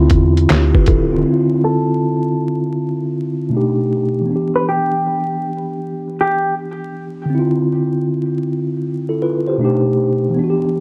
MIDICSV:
0, 0, Header, 1, 5, 480
1, 0, Start_track
1, 0, Tempo, 759494
1, 789, Time_signature, 4, 2, 24, 8
1, 6827, End_track
2, 0, Start_track
2, 0, Title_t, "Hollow-body jazz guitar"
2, 0, Program_c, 0, 26
2, 1040, Note_on_c, 0, 69, 67
2, 1887, Note_off_c, 0, 69, 0
2, 2879, Note_on_c, 0, 71, 65
2, 2947, Note_off_c, 0, 71, 0
2, 2962, Note_on_c, 0, 67, 72
2, 3890, Note_off_c, 0, 67, 0
2, 3923, Note_on_c, 0, 67, 65
2, 4132, Note_off_c, 0, 67, 0
2, 6827, End_track
3, 0, Start_track
3, 0, Title_t, "Tine electric piano"
3, 0, Program_c, 1, 4
3, 0, Control_c, 1, 64, 127
3, 0, Note_on_c, 1, 50, 90
3, 0, Note_on_c, 1, 60, 82
3, 0, Note_on_c, 1, 64, 84
3, 0, Note_on_c, 1, 65, 100
3, 306, Note_off_c, 1, 60, 0
3, 310, Note_on_c, 1, 67, 61
3, 313, Note_off_c, 1, 64, 0
3, 315, Note_on_c, 1, 62, 55
3, 321, Note_off_c, 1, 65, 0
3, 459, Note_off_c, 1, 67, 0
3, 461, Note_off_c, 1, 62, 0
3, 472, Note_on_c, 1, 71, 66
3, 475, Note_on_c, 1, 65, 58
3, 547, Note_off_c, 1, 71, 0
3, 549, Note_off_c, 1, 65, 0
3, 552, Note_on_c, 1, 69, 70
3, 556, Note_on_c, 1, 64, 54
3, 685, Note_off_c, 1, 50, 0
3, 700, Note_off_c, 1, 69, 0
3, 702, Note_off_c, 1, 64, 0
3, 710, Note_on_c, 1, 65, 64
3, 713, Note_on_c, 1, 60, 51
3, 743, Note_on_c, 1, 50, 67
3, 764, Note_off_c, 1, 60, 0
3, 772, Note_on_c, 1, 60, 60
3, 796, Control_c, 1, 64, 0
3, 802, Note_on_c, 1, 64, 62
3, 825, Note_off_c, 1, 65, 0
3, 832, Note_on_c, 1, 65, 72
3, 917, Control_c, 1, 64, 127
3, 2180, Note_off_c, 1, 50, 0
3, 2195, Note_off_c, 1, 60, 0
3, 2208, Note_on_c, 1, 47, 66
3, 2210, Note_off_c, 1, 64, 0
3, 2219, Note_on_c, 1, 57, 63
3, 2225, Note_off_c, 1, 65, 0
3, 2231, Note_on_c, 1, 62, 58
3, 2238, Control_c, 1, 64, 0
3, 2241, Note_on_c, 1, 63, 62
3, 2254, Note_on_c, 1, 67, 80
3, 2358, Control_c, 1, 64, 127
3, 2663, Note_on_c, 1, 52, 55
3, 2693, Note_on_c, 1, 59, 52
3, 2698, Note_off_c, 1, 47, 0
3, 2704, Note_off_c, 1, 57, 0
3, 2710, Note_off_c, 1, 62, 0
3, 2715, Note_off_c, 1, 63, 0
3, 2717, Control_c, 1, 64, 0
3, 2721, Note_off_c, 1, 67, 0
3, 2723, Note_on_c, 1, 62, 51
3, 2753, Note_on_c, 1, 67, 62
3, 2821, Control_c, 1, 64, 127
3, 4580, Note_off_c, 1, 52, 0
3, 4585, Note_on_c, 1, 50, 68
3, 4595, Note_off_c, 1, 59, 0
3, 4611, Note_off_c, 1, 62, 0
3, 4613, Note_on_c, 1, 60, 65
3, 4626, Note_off_c, 1, 67, 0
3, 4637, Control_c, 1, 64, 0
3, 4644, Note_on_c, 1, 64, 61
3, 4672, Note_on_c, 1, 65, 78
3, 4742, Control_c, 1, 64, 127
3, 5577, Note_off_c, 1, 64, 0
3, 5591, Note_off_c, 1, 65, 0
3, 5745, Note_on_c, 1, 69, 59
3, 5750, Note_on_c, 1, 64, 48
3, 5824, Note_off_c, 1, 69, 0
3, 5826, Note_off_c, 1, 64, 0
3, 5829, Note_on_c, 1, 71, 65
3, 5833, Note_on_c, 1, 65, 55
3, 5978, Note_off_c, 1, 71, 0
3, 5980, Note_off_c, 1, 65, 0
3, 5988, Note_on_c, 1, 72, 62
3, 5993, Note_on_c, 1, 67, 50
3, 6021, Note_off_c, 1, 50, 0
3, 6035, Note_off_c, 1, 60, 0
3, 6053, Note_on_c, 1, 47, 70
3, 6063, Note_on_c, 1, 57, 61
3, 6074, Note_on_c, 1, 62, 67
3, 6078, Control_c, 1, 64, 0
3, 6085, Note_on_c, 1, 63, 64
3, 6088, Note_off_c, 1, 67, 0
3, 6096, Note_on_c, 1, 67, 78
3, 6193, Control_c, 1, 64, 127
3, 6215, Note_off_c, 1, 72, 0
3, 6506, Note_on_c, 1, 52, 70
3, 6536, Note_on_c, 1, 59, 62
3, 6541, Note_off_c, 1, 47, 0
3, 6546, Note_off_c, 1, 57, 0
3, 6551, Note_off_c, 1, 62, 0
3, 6555, Control_c, 1, 64, 0
3, 6557, Note_off_c, 1, 63, 0
3, 6562, Note_off_c, 1, 67, 0
3, 6564, Note_on_c, 1, 62, 64
3, 6595, Note_on_c, 1, 66, 59
3, 6626, Note_off_c, 1, 66, 0
3, 6636, Note_on_c, 1, 67, 77
3, 6683, Control_c, 1, 64, 127
3, 6827, Note_off_c, 1, 52, 0
3, 6827, Note_off_c, 1, 59, 0
3, 6827, Note_off_c, 1, 62, 0
3, 6827, Note_off_c, 1, 67, 0
3, 6827, End_track
4, 0, Start_track
4, 0, Title_t, "Sub bass"
4, 0, Program_c, 2, 38
4, 74, Note_on_c, 2, 40, 91
4, 297, Note_off_c, 2, 40, 0
4, 317, Note_on_c, 2, 38, 92
4, 461, Note_off_c, 2, 38, 0
4, 558, Note_on_c, 2, 26, 86
4, 702, Note_off_c, 2, 26, 0
4, 713, Note_on_c, 2, 25, 90
4, 787, Note_off_c, 2, 25, 0
4, 6827, End_track
5, 0, Start_track
5, 0, Title_t, "Drums"
5, 61, Note_on_c, 9, 42, 64
5, 68, Note_on_c, 9, 36, 85
5, 124, Note_off_c, 9, 42, 0
5, 131, Note_off_c, 9, 36, 0
5, 235, Note_on_c, 9, 42, 34
5, 298, Note_off_c, 9, 42, 0
5, 311, Note_on_c, 9, 42, 90
5, 315, Note_on_c, 9, 39, 90
5, 318, Note_on_c, 9, 38, 110
5, 375, Note_off_c, 9, 42, 0
5, 379, Note_off_c, 9, 39, 0
5, 381, Note_off_c, 9, 38, 0
5, 471, Note_on_c, 9, 36, 91
5, 535, Note_off_c, 9, 36, 0
5, 545, Note_on_c, 9, 42, 55
5, 554, Note_on_c, 9, 36, 89
5, 608, Note_off_c, 9, 42, 0
5, 617, Note_off_c, 9, 36, 0
5, 6827, End_track
0, 0, End_of_file